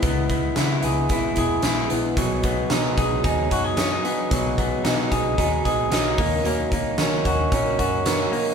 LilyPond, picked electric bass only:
\new Staff \with { instrumentName = "Picked electric bass" } { \clef bass \time 4/4 \key gis \minor \tempo 4 = 112 cis,4 cis8 cis,8 gis,,8 e,,8 ais,,8 ais,,8 | b,,4 b,8 b,,8 dis,8 fis,4 r8 | b,,4 b,8 b,,8 dis,8 ais,,8 b,,8 dis,8~ | dis,4 dis8 dis,8 ais,,8 fis,4 r8 | }